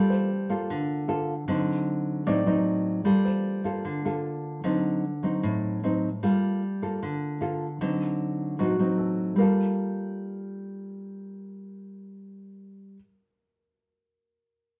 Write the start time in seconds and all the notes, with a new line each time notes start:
Already playing: G3 A#3 F4 A4
0.10 C5
0.49 A#3 F4 A4
0.70 D3
1.08 A#3 F4 A4
1.48 D3 F#3 C4 D#4
2.27 A2 F#3 C4 D#4 D5
2.46 F#3 C4 D#4
3.05 G3 A#3 F4 A4
3.25 C5
3.64 A#3 F4 A4
3.85 D3
4.05 A#3 F4 A4
4.64 D3 F#3 C4 D#4
5.23 F#3 C4 D#4
5.43 A2
5.83 F#3 C4 D#4
6.23 G3 A#3 F4 A4
6.82 A#3 F4 A4
7.03 D3
7.41 A#3 F4 A4
7.81 D3 F#3 C4 D#4
8.59 A2 F#3 C4 D#4 F#4
8.79 F#3 C4 D#4
8.98 A4
9.36 G3 A#3 A#4
9.40 F4 A4